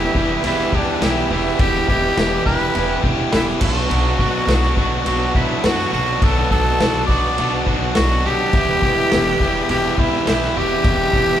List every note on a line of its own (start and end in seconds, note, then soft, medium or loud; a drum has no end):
0.00 0.13 E2 medium
0.00 0.14 B2 medium
0.00 0.15 E3 medium
0.00 0.15 G3 loud
0.00 1.57 G3 medium
0.00 0.15 B3 medium
0.00 1.58 B3 medium
0.00 0.15 E4 loud
0.00 0.44 E4 medium
0.00 1.57 E4 medium
0.00 0.16 G4 medium
0.00 1.58 B4 medium
0.15 0.33 E1 medium
0.15 0.43 E2 medium
0.15 0.43 B2 medium
0.15 0.44 E3 medium
0.15 0.44 G3 medium
0.15 0.44 B3 medium
0.15 0.44 E4 medium
0.15 0.45 G4 medium
0.15 kick medium
0.44 0.62 E1 medium
0.44 0.71 E2 medium
0.44 0.72 B2 loud
0.44 0.72 E3 loud
0.44 0.73 G3 loud
0.44 0.73 B3 medium
0.44 0.73 E4 medium
0.44 0.77 E4 medium
0.44 0.74 G4 loud
0.44 crash medium
0.73 1.00 E2 medium
0.73 0.91 E2 medium
0.73 1.00 B2 medium
0.73 1.01 E3 medium
0.73 1.01 G3 medium
0.73 1.01 B3 medium
0.73 1.06 D4 medium
0.73 1.02 E4 medium
0.73 1.02 G4 medium
0.73 kick medium
1.01 1.20 B1 medium
1.01 1.28 E2 medium
1.01 1.29 B2 medium
1.01 1.30 E3 medium
1.01 1.30 G3 medium
1.01 1.31 B3 medium
1.01 1.30 E4 medium
1.01 1.32 E4 medium
1.01 1.31 G4 loud
1.01 snare loud
1.01 crash medium
1.30 1.48 E1 medium
1.30 1.58 E2 medium
1.30 1.58 B2 medium
1.30 1.59 E3 medium
1.30 1.59 G3 medium
1.30 1.59 B3 loud
1.30 1.59 E4 medium
1.30 1.61 E4 medium
1.30 1.60 G4 medium
1.59 1.78 E1 loud
1.59 1.86 E2 loud
1.59 1.87 B2 medium
1.59 1.88 E3 loud
1.59 3.59 G3 medium
1.59 1.88 G3 loud
1.59 3.59 B3 medium
1.59 1.88 B3 loud
1.59 3.59 E4 medium
1.59 1.88 E4 loud
1.59 1.88 G4 loud
1.59 1.89 G4 loud
1.59 3.59 B4 medium
1.59 kick loud
1.59 crash medium
1.87 2.06 E1 medium
1.87 2.16 E2 medium
1.87 2.16 B2 medium
1.87 2.17 E3 medium
1.87 2.17 G3 medium
1.87 2.17 B3 medium
1.87 2.17 E4 loud
1.87 2.42 G4 medium
1.87 2.18 G4 loud
1.87 kick medium
2.17 2.35 E1 loud
2.17 2.44 E2 medium
2.17 2.45 B2 medium
2.17 2.45 E3 medium
2.17 2.46 G3 medium
2.17 2.46 B3 medium
2.17 2.46 E4 medium
2.17 2.46 G4 medium
2.17 snare loud
2.17 crash medium
2.46 2.64 E1 medium
2.46 2.73 E2 medium
2.46 2.74 B2 medium
2.46 2.74 E3 medium
2.46 2.75 G3 loud
2.46 2.74 B3 medium
2.46 2.75 E4 medium
2.46 2.75 G4 medium
2.46 3.02 B4 loud
2.46 kick medium
2.74 2.94 E1 medium
2.74 3.02 E2 medium
2.74 3.02 B2 medium
2.74 3.03 E3 medium
2.74 3.03 G3 loud
2.74 3.03 B3 loud
2.74 3.03 E4 loud
2.74 3.04 G4 loud
2.74 crash medium
3.03 3.22 E1 medium
3.03 3.32 E2 medium
3.03 3.32 B2 medium
3.03 3.32 E3 medium
3.03 3.33 G3 medium
3.03 3.32 B3 medium
3.03 3.33 E4 medium
3.03 3.34 G4 loud
3.03 kick medium
3.32 3.52 E1 medium
3.32 3.60 E2 medium
3.32 3.59 B2 medium
3.32 3.60 E3 medium
3.32 3.60 G3 loud
3.32 3.61 B3 loud
3.32 3.61 E4 medium
3.32 3.48 E4 medium
3.32 3.61 G4 medium
3.32 snare loud
3.32 crash medium
3.47 snare soft
3.61 3.80 B1 medium
3.61 3.89 B2 loud
3.61 3.90 F#3 loud
3.61 5.90 F#3 medium
3.61 3.90 B3 loud
3.61 5.90 B3 medium
3.61 3.91 D4 loud
3.61 5.91 D4 medium
3.61 3.91 F#4 loud
3.61 5.90 A4 medium
3.61 kick loud
3.61 crash loud
3.65 5.04 F#4 medium
3.90 4.08 B1 loud
3.90 4.18 B2 medium
3.90 4.19 F#3 loud
3.90 4.19 B3 loud
3.90 4.20 D4 loud
3.90 4.20 F#4 loud
3.90 crash medium
4.19 4.37 B1 medium
4.19 4.48 B2 medium
4.19 4.48 F#3 loud
4.19 4.49 B3 medium
4.19 4.49 D4 medium
4.19 4.49 F#4 loud
4.19 kick medium
4.47 4.66 B1 loud
4.47 4.77 B2 medium
4.47 4.77 F#3 medium
4.47 4.78 B3 medium
4.47 4.78 D4 medium
4.47 4.78 F#4 loud
4.47 snare medium
4.47 crash medium
4.62 snare soft
4.77 4.96 B1 medium
4.77 5.04 B2 medium
4.77 5.05 F#3 medium
4.77 5.06 B3 medium
4.77 5.06 D4 medium
4.77 5.06 F#4 medium
4.77 kick medium
5.05 5.24 B1 medium
5.05 5.34 B2 medium
5.05 5.34 F#3 loud
5.05 5.35 B3 loud
5.05 5.35 D4 loud
5.05 5.34 F#4 medium
5.05 5.36 F#4 medium
5.05 crash medium
5.35 5.63 B2 medium
5.35 5.53 B2 medium
5.35 5.64 F#3 medium
5.35 5.65 B3 medium
5.35 5.64 D4 medium
5.35 5.67 E4 medium
5.35 5.65 F#4 loud
5.35 kick medium
5.64 5.82 F#2 medium
5.64 5.91 B2 medium
5.64 5.91 F#3 medium
5.64 5.93 B3 medium
5.64 5.93 D4 medium
5.64 5.92 F#4 medium
5.64 5.92 F#4 loud
5.64 snare loud
5.64 crash medium
5.78 snare soft
5.92 6.11 B1 medium
5.92 6.20 B2 medium
5.92 6.21 F#3 medium
5.92 8.50 B3 medium
5.92 6.22 B3 loud
5.92 8.51 D4 medium
5.92 6.22 D4 loud
5.92 8.51 F#4 medium
5.92 6.25 F#4 medium
5.92 6.22 F#4 medium
5.92 8.50 A4 medium
6.22 6.40 B1 medium
6.22 6.49 B2 medium
6.22 6.50 F#3 loud
6.22 6.50 B3 loud
6.22 6.50 D4 loud
6.22 6.51 F#4 loud
6.22 6.51 A4 medium
6.22 kick loud
6.22 crash medium
6.50 6.69 B1 medium
6.50 6.78 B2 medium
6.50 6.79 F#3 medium
6.50 6.80 B3 medium
6.50 6.79 D4 loud
6.50 6.80 F#4 loud
6.50 7.05 A4 loud
6.50 kick medium
6.80 6.98 B1 loud
6.80 7.07 B2 medium
6.80 7.08 F#3 medium
6.80 7.09 B3 medium
6.80 7.08 D4 medium
6.80 7.09 F#4 medium
6.80 snare loud
6.80 crash medium
7.07 7.27 B1 medium
7.07 7.37 B2 medium
7.07 7.36 F#3 medium
7.07 7.38 B3 medium
7.07 7.38 D4 medium
7.07 7.38 F#4 medium
7.07 7.63 D5 loud
7.07 kick medium
7.38 7.56 B1 medium
7.38 7.65 B2 medium
7.38 7.65 F#3 medium
7.38 7.66 B3 medium
7.38 7.66 D4 medium
7.38 7.66 F#4 loud
7.38 crash medium
7.66 7.85 B1 loud
7.66 7.94 B2 medium
7.66 7.94 F#3 medium
7.66 7.95 B3 medium
7.66 7.95 D4 medium
7.66 7.95 F#4 medium
7.66 kick medium
7.95 8.15 B1 medium
7.95 8.24 B2 medium
7.95 8.24 F#3 medium
7.95 8.25 B3 medium
7.95 8.25 D4 medium
7.95 8.27 F#4 loud
7.95 8.25 F#4 medium
7.95 snare loud
7.95 crash medium
8.25 8.43 B1 medium
8.25 8.52 B2 medium
8.25 8.52 F#3 loud
8.25 8.55 B3 medium
8.25 8.52 D4 loud
8.25 8.53 F#4 medium
8.25 9.70 G4 loud
8.53 8.72 E1 medium
8.53 8.81 E2 loud
8.53 8.81 B2 loud
8.53 8.83 E3 loud
8.53 10.83 G3 medium
8.53 8.83 G3 loud
8.53 10.83 B3 medium
8.53 8.83 B3 loud
8.53 10.82 E4 medium
8.53 8.83 E4 loud
8.53 8.84 G4 loud
8.53 10.82 B4 medium
8.53 kick loud
8.53 crash medium
8.82 9.01 E1 medium
8.82 9.11 E2 medium
8.82 9.10 B2 medium
8.82 9.11 E3 loud
8.82 9.12 G3 medium
8.82 9.12 B3 medium
8.82 9.12 E4 loud
8.82 9.13 G4 medium
8.82 kick medium
9.11 9.30 E1 loud
9.11 9.39 E2 medium
9.11 9.40 B2 medium
9.11 9.40 E3 medium
9.11 9.41 G3 medium
9.11 9.41 B3 medium
9.11 9.41 E4 medium
9.11 9.41 G4 medium
9.11 snare loud
9.11 crash medium
9.27 snare soft
9.40 9.58 E1 medium
9.40 9.68 E2 medium
9.40 9.69 B2 medium
9.40 9.69 E3 medium
9.40 9.70 G3 medium
9.40 9.69 B3 medium
9.40 9.71 E4 medium
9.40 9.71 G4 medium
9.40 kick medium
9.69 9.87 E1 medium
9.69 9.96 E2 medium
9.69 9.97 B2 medium
9.69 9.97 E3 medium
9.69 9.98 G3 loud
9.69 9.97 B3 medium
9.69 9.98 E4 medium
9.69 10.01 G4 loud
9.69 9.98 G4 medium
9.69 crash medium
9.97 10.25 E2 medium
9.97 10.16 E2 medium
9.97 10.25 B2 medium
9.97 10.26 E3 loud
9.97 10.26 G3 medium
9.97 10.26 B3 medium
9.97 10.26 E4 medium
9.97 10.27 E4 medium
9.97 10.27 G4 loud
9.97 kick medium
10.26 10.45 B1 medium
10.26 10.54 E2 medium
10.26 10.54 B2 medium
10.26 10.54 E3 medium
10.26 10.55 G3 medium
10.26 10.55 B3 medium
10.26 10.55 E4 medium
10.26 10.59 E4 medium
10.26 10.56 G4 medium
10.26 snare loud
10.26 crash medium
10.42 snare soft
10.55 10.74 E1 medium
10.55 10.82 E2 medium
10.55 10.83 B2 loud
10.55 10.83 E3 medium
10.55 10.83 G3 medium
10.55 10.84 B3 medium
10.55 10.84 E4 medium
10.55 10.84 G4 loud
10.55 11.40 G4 loud
10.83 11.03 E1 loud
10.83 11.12 E2 medium
10.83 11.12 B2 loud
10.83 11.13 E3 medium
10.83 11.13 G3 loud
10.83 11.14 B3 loud
10.83 11.40 B3 medium
10.83 11.14 E4 loud
10.83 11.40 E4 medium
10.83 11.14 G4 loud
10.83 11.40 G4 medium
10.83 11.40 B4 medium
10.83 kick loud
10.83 crash medium
11.13 11.32 E1 medium
11.13 11.40 E2 medium
11.13 11.40 B2 medium
11.13 11.40 E3 medium
11.13 11.40 G3 medium
11.13 11.40 B3 medium
11.13 11.40 E4 loud
11.13 11.40 G4 loud
11.13 kick medium